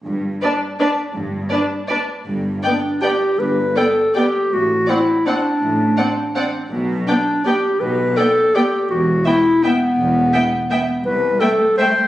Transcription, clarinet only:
\new Staff \with { instrumentName = "Clarinet" } { \time 3/4 \key g \major \tempo 4 = 164 r2. | r2. | r4 d'4 g'4 | b'4 a'4 g'4 |
fis'4 e'4 d'4~ | d'2. | r4 d'4 g'4 | b'4 a'4 g'4 |
fis'4 e'4 b4~ | b2. | b'4 a'4 c''4 | }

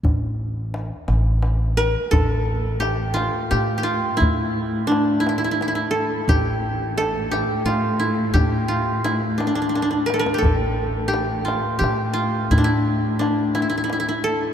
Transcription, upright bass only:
\new Staff \with { instrumentName = "Upright bass" } { \clef bass \time 6/8 \tempo 4. = 58 a,,4. a,,4. | a,,2 a,4 | a,2 r4 | a,,2 a,4 |
a,2 r4 | a,,2 a,4 | a,2 r4 | }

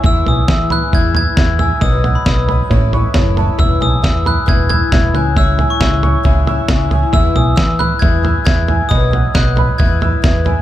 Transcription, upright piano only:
\new Staff \with { instrumentName = "Upright piano" } { \time 4/4 \key e \major \tempo 4 = 135 e''8 gis''8 e''8 b''8 e''8 e'''8 e''8 gis''8 | dis''8 fis''8 dis''8 b''8 cis''8 cis'''8 cis''8 a''8 | e''8 gis''8 e''8 b''8 e''8 e'''8 e''8 gis''8 | e''8 gis''8 e''8 cis'''8 e''8 e'''8 e''8 gis''8 |
e''8 gis''8 e''8 b''8 e''8 e'''8 e''8 gis''8 | dis''8 fis''8 dis''8 b''8 e''8 e'''8 e''8 gis''8 | }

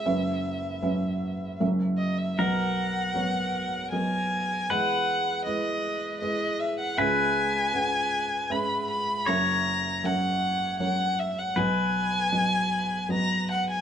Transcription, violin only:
\new Staff \with { instrumentName = "Violin" } { \time 3/4 \key b \major \tempo 4 = 78 e''2 r8 dis''16 e''16 | fis''2 gis''4 | fis''4 dis''4 dis''8 e''16 fis''16 | gis''2 b''8 b''8 |
ais''4 fis''4 fis''8 e''16 fis''16 | gis''2 ais''8 fis''16 gis''16 | }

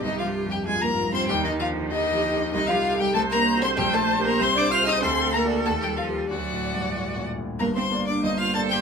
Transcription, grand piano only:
\new Staff \with { instrumentName = "Grand piano" } { \clef bass \time 2/4 \key ees \major \tempo 4 = 96 \tuplet 3/2 { c,8 g,8 f,8 g,8 aes,8 g,8 } | \tuplet 3/2 { ees,8 ees8 d8 ees8 f8 ees8 } | \key g \minor \tuplet 3/2 { c,8 ees'8 <g' a'>8 c,8 d'8 <fis' a'>8 } | \tuplet 3/2 { bes,,8 d'8 <g' bes'>8 c,8 c'8 <aes' ees''>8 } |
\tuplet 3/2 { d,8 a8 <fis' d''>8 ees,8 g8 <g' bes'>8 } | \tuplet 3/2 { d,8 a,8 g,8 a,8 bes,8 a,8 } | <g,, g,>8 <bes d' d''>8 <g,, g,>8 <bes d' d''>8 | }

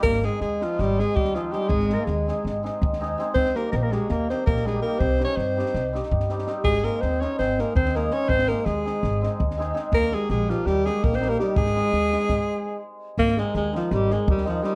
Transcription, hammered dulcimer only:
\new Staff \with { instrumentName = "Hammered dulcimer" } { \time 9/8 \key aes \major \tempo 4. = 110 r8 <aes c' ees' aes'>8 r8 <aes c' ees' aes'>8 r8 <aes c' ees' aes'>8 r8 <aes c' ees' aes'>8 <aes c' ees' aes'>8 | r8 <aes c' ees' aes'>8 r8 <aes c' ees' aes'>8 r8 <aes c' ees' aes'>8 r8 <aes c' ees' aes'>8 <aes c' ees' aes'>8 | r8 <g bes ees' g'>8 r8 <g bes ees' g'>8 r8 <g bes ees' g'>8 r8 <g bes ees' g'>8 <g bes ees' g'>8 | r8 <g c' ees' g'>8 r8 <g c' ees' g'>8 r8 <g c' ees' g'>8 r8 <g c' ees' g'>8 <g c' ees' g'>8 |
r8 <aes c' ees' aes'>8 r8 <aes c' ees' aes'>8 r8 <aes c' ees' aes'>8 r8 <aes c' ees' aes'>8 <aes c' ees' aes'>8 | r8 <aes c' ees' aes'>8 r8 <aes c' ees' aes'>8 r8 <aes c' ees' aes'>8 r8 <aes c' ees' aes'>8 <aes c' ees' aes'>8 | r8 <g bes ees' g'>8 r8 <g bes ees' g'>8 r8 <g bes ees' g'>8 r8 <g bes ees' g'>8 <g bes ees' g'>8 | r8 <aes c' ees' aes'>8 r8 <aes c' ees' aes'>8 r2 r8 |
r8 <ees aes c' ees'>8 r8 <ees aes c' ees'>8 r8 <ees aes c' ees'>8 r8 <ees aes c' ees'>8 <ees aes c' ees'>8 | }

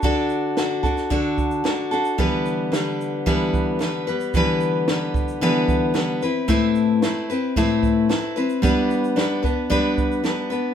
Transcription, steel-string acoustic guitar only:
\new Staff \with { instrumentName = "Steel-string acoustic guitar" } { \time 4/4 \key e \minor \tempo 4 = 112 <d d' fis' a'>4 <d d' fis' a'>8 <d' fis' a'>8 <d d' fis' a'>4 <d d' fis' a'>8 <d' fis' a'>8 | <d e g b b'>4 <d g b b'>4 <d e g b b'>4 <d g b b'>8 <g b b'>8 | <d e g b b'>4 <d g b b'>4 <d e g b b'>4 <d g b b'>8 <c' e' b'>8 | <a, a c' e' b'>4 <a c' e' b'>8 <c' e' b'>8 <a, a c' e' b'>4 <a c' e' b'>8 <c' e' b'>8 |
<g b d' b'>4 <g b d' b'>8 <b d' b'>8 <g b d' b'>4 <g b d' b'>8 <b d' b'>8 | }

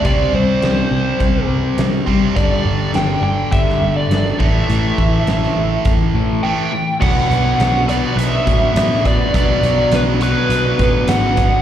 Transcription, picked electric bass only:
\new Staff \with { instrumentName = "Picked electric bass" } { \clef bass \time 4/4 \key b \phrygian \tempo 4 = 103 c,8 c,8 c,8 c,8 c,8 c,8 c,8 c,8 | g,,8 g,,8 g,,8 g,,8 g,,8 g,,8 g,,8 a,,8 | a,,8 a,,8 a,,8 a,,8 a,,8 a,,8 r4 | b,,8 b,,8 b,,4 b,,8 a,8 a,4 |
b,,8 b,,8 b,,4 b,,8 a,8 gis,,4 | }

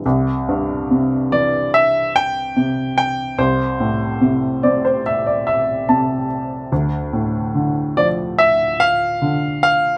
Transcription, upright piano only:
<<
  \new Staff \with { instrumentName = "Upright piano" } { \time 4/4 \key c \major \tempo 4 = 72 r1 | r4. d''16 c''16 e''16 d''16 e''8 a''4 | r1 | }
  \new Staff \with { instrumentName = "Upright piano" } { \clef bass \time 4/4 \key c \major c,8 g,8 c8 e4. c4 | c,8 a,8 c8 c'4. c4 | d,8 a,8 d8 f4. d4 | }
>>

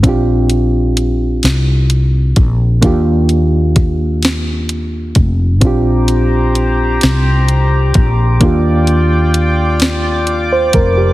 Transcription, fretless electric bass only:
\new Staff \with { instrumentName = "Fretless electric bass" } { \clef bass \time 6/8 \key bes \major \tempo 4. = 43 bes,,4. c,4 bes,,8 | ees,2~ ees,8 f,,8 | bes,,4. c,4 bes,,8 | ees,2~ ees,8 f,,8 | }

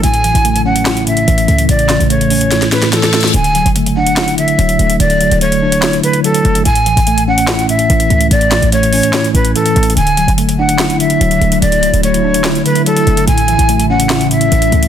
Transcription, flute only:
\new Staff \with { instrumentName = "Flute" } { \time 4/4 \key d \lydian \tempo 4 = 145 gis''4. fis''4 e''4. | d''4 cis''4. b'8 a'4 | gis''4. fis''4 e''4. | d''4 cis''4. b'8 a'4 |
gis''4. fis''4 e''4. | d''4 cis''4. b'8 a'4 | gis''4. fis''4 e''4. | d''4 cis''4. b'8 a'4 |
gis''4. fis''4 e''4. | }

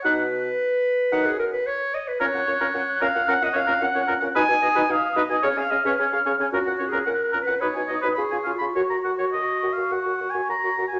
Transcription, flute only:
\new Staff \with { instrumentName = "Flute" } { \time 4/4 \key fis \major \tempo 4 = 110 fis'''8 r4. fis'''8 r4. | fis'''1 | dis'''2 eis'''2 | fis'''2 dis'''4 cis'''4~ |
cis'''2.~ cis'''8 r8 | }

